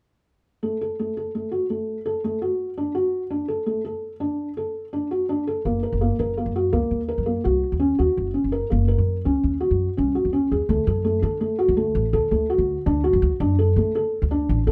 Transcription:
0.63 0.76 A3 medium
0.81 0.95 A4 soft
0.99 1.13 A3 medium
1.17 1.30 A4 soft
1.35 1.48 A3 soft
1.51 1.65 F#4 soft
1.70 1.97 A3 soft
2.06 2.19 A4 medium
2.24 2.38 A3 medium
2.42 2.69 F#4 soft
2.78 2.91 D4 medium
2.95 3.22 F#4 medium
3.30 3.45 D4 medium
3.48 3.62 A4 medium
3.66 3.80 A3 soft
3.85 4.12 A4 medium
4.20 4.48 D4 medium
4.57 4.84 A4 medium
4.93 5.07 D4 medium
5.11 5.25 F#4 soft
5.29 5.43 D4 medium
5.47 5.61 A4 medium
5.65 5.82 F#1 medium
5.65 5.79 A#3 medium
5.83 5.97 A#4 medium
5.92 6.09 F#1 medium
6.01 6.15 A#3 medium
6.19 6.45 F#1 medium
6.19 6.33 A#4 medium
6.37 6.51 A#3 soft
6.46 6.71 F#2 medium
6.56 6.69 F#4 medium
6.73 6.82 C#2 medium
6.73 7.00 A#3 medium
6.91 7.17 D#2 medium
7.08 7.22 A#4 medium
7.18 7.35 F#2 medium
7.26 7.40 A#3 medium
7.44 7.62 C2 medium
7.44 7.72 F#4 medium
7.72 7.98 D#2 medium
7.80 7.94 C#4 medium
7.99 8.08 D#2 medium
7.99 8.26 F#4 medium
8.17 8.34 F#1 medium
8.34 8.48 C#4 soft
8.44 8.61 F#1 medium
8.52 8.66 A#4 medium
8.70 8.97 F#1 medium
8.70 8.84 A#3 medium
8.88 9.16 A#4 medium
8.98 9.24 F#2 medium
9.25 9.34 C#2 medium
9.25 9.53 C#4 medium
9.44 9.69 D#2 medium
9.60 9.88 F#4 medium
9.71 9.88 F#2 medium
9.97 10.15 C2 medium
9.97 10.11 C#4 medium
10.15 10.29 F#4 soft
10.25 10.50 D#2 medium
10.33 10.47 C#4 medium
10.51 10.60 D#2 medium
10.51 10.65 G#4 medium
10.69 10.78 D2 medium
10.69 10.83 A3 medium
10.87 11.22 F#2 medium
10.87 11.01 A4 medium
11.04 11.19 A3 medium
11.22 11.41 D3 medium
11.22 11.37 A4 medium
11.41 11.55 A3 medium
11.59 11.73 F#4 medium
11.68 11.94 D2 medium
11.77 12.05 A3 medium
11.95 12.12 A1 medium
12.13 12.22 D2 medium
12.13 12.27 A4 medium
12.31 12.57 D2 medium
12.31 12.45 A3 medium
12.50 12.77 F#4 medium
12.58 12.76 D2 medium
12.86 13.12 D2 medium
12.86 13.00 D4 medium
13.04 13.31 F#4 medium
13.13 13.21 F#2 medium
13.22 13.31 D2 medium
13.40 13.74 F#2 medium
13.40 13.54 D4 medium
13.59 13.72 A4 medium
13.76 13.94 D3 medium
13.76 13.91 A3 medium
13.95 14.22 A4 medium
14.22 14.47 D2 medium
14.31 14.58 D4 medium
14.49 14.66 A1 medium
14.67 14.72 D2 medium
14.67 14.72 A4 medium

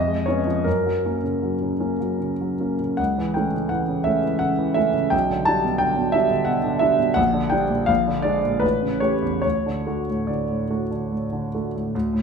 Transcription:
0.00 0.63 F2 soft
0.00 0.26 D#5 medium
0.08 0.39 G#3 soft
0.26 0.45 B3 soft
0.26 0.45 C#4 soft
0.26 0.65 C#5 medium
0.47 0.66 F3 soft
0.64 2.95 F#2 soft
0.64 2.18 A#4 medium
0.86 1.15 F#3 soft
1.05 1.21 A#3 soft
1.05 1.21 C#4 soft
1.24 1.53 C#3 soft
1.42 1.72 F#3 soft
1.62 1.92 C#3 soft
1.80 1.97 A#3 soft
1.80 1.97 C#4 soft
2.00 2.32 F#3 soft
2.20 2.52 C#3 soft
2.41 2.73 F#3 soft
2.60 2.78 A#3 soft
2.60 2.78 C#4 soft
2.80 2.99 C#3 soft
2.97 5.09 C#2 soft
2.97 3.35 F#5 medium
3.18 3.47 E3 soft
3.34 3.52 A3 soft
3.34 3.53 C#4 soft
3.34 3.71 G5 soft
3.54 3.83 C#3 soft
3.69 4.00 E3 soft
3.69 4.06 F#5 medium
3.89 4.17 C#3 soft
4.04 4.22 A3 soft
4.04 4.23 C#4 soft
4.04 4.40 E5 medium
4.24 4.52 E3 soft
4.39 4.70 C#3 soft
4.39 4.76 F#5 medium
4.59 4.87 E3 soft
4.74 4.93 A3 soft
4.74 4.93 C#4 soft
4.74 5.11 E5 medium
4.93 5.12 C#3 soft
5.10 7.13 B1 soft
5.10 5.47 G5 medium
5.30 5.59 D3 soft
5.45 5.63 G3 soft
5.45 5.64 D4 soft
5.45 5.81 A5 medium
5.64 5.92 B2 soft
5.78 6.08 D3 soft
5.78 6.14 G5 medium
5.98 6.25 B2 soft
6.12 6.30 G3 soft
6.12 6.30 D4 soft
6.12 6.47 E5 medium
6.30 6.58 D3 soft
6.45 6.75 B2 soft
6.45 6.81 F#5 medium
6.64 6.93 D3 soft
6.79 6.98 G3 soft
6.79 6.98 D4 soft
6.79 7.16 E5 medium
6.99 7.17 B2 soft
7.14 7.86 A#1 medium
7.14 7.52 F#5 medium
7.34 7.63 D3 soft
7.50 7.69 G3 soft
7.50 7.69 D4 soft
7.50 7.87 G5 medium
7.70 7.89 A#2 soft
7.86 8.60 A#1 medium
7.86 8.24 F5 medium
8.07 8.36 D3 soft
8.22 8.41 G#3 soft
8.22 8.42 D4 soft
8.22 8.61 D5 medium
8.44 8.63 A#2 soft
8.60 9.41 A1 medium
8.60 9.01 B4 medium
8.82 9.14 C#3 soft
9.00 9.21 A3 soft
9.00 9.21 G4 soft
9.00 9.40 C#5 medium
9.22 9.44 E2 soft
9.42 11.90 D2 soft
9.42 10.27 C#5 medium
9.66 10.00 D3 soft
9.87 10.06 A3 soft
9.87 10.06 F#4 soft
10.10 10.42 A2 soft
10.27 10.62 D3 soft
10.27 11.11 D5 soft
10.49 10.82 A2 soft
10.70 10.89 A3 soft
10.70 10.89 F#4 soft
10.91 11.25 D3 soft
11.12 11.46 A2 soft
11.33 11.67 D3 soft
11.55 11.73 A3 soft
11.55 11.73 F#4 soft
11.75 11.94 A2 soft
11.95 12.22 D2 medium
12.13 12.22 A2 soft

